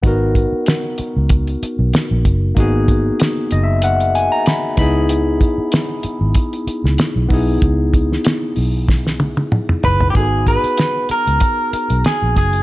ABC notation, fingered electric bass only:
X:1
M:4/4
L:1/16
Q:"Swing 16ths" 1/4=95
K:G#m
V:1 name="Fingered electric bass" clef=bass
G,,,3 z4 C,,3 z B,,, z A,,, F,,,2 | G,,,4 z2 F,,,4- F,,, z3 C,,2- | C,,3 z4 G,,, z3 C,, z B,,, B,,,2 | C,,4 z2 B,,,4- B,,, z3 F,,,2 |
G,,,3 z4 C,, z3 B,,, z A,,, F,,,2 |]